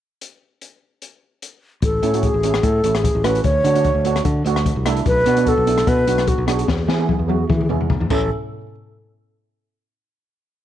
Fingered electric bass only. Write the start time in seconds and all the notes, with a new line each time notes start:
1.82 A1
2.03 A2
2.34 A1
2.63 A2
2.84 A1
3.15 A1
3.44 D2
3.64 D3
3.95 D2
4.25 D3
4.45 D2
4.76 C2
5.06 B1
5.26 B2
5.58 B1
5.87 B2
6.07 B1
6.38 B1
6.68 E2
6.88 E3
7.19 E2
7.50 E3
7.69 E2
8.00 E2
8.10 A1